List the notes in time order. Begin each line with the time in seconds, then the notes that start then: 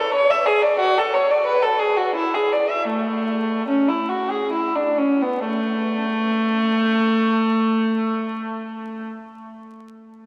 0.00 A4
0.14 C#5
0.31 E5
0.46 G#4
0.63 D5
0.79 F#4
0.98 A4
1.14 C#5
1.31 D5
1.46 B4
1.62 A4
1.79 G#4
1.97 F#4
2.15 E4
2.34 G#4
2.52 D5
2.70 E5
2.88 A3
3.68 C#4
3.88 E4
4.09 F#4
4.30 G#4
4.53 E4
4.76 D4
4.98 C#4
5.22 B3
5.45 A3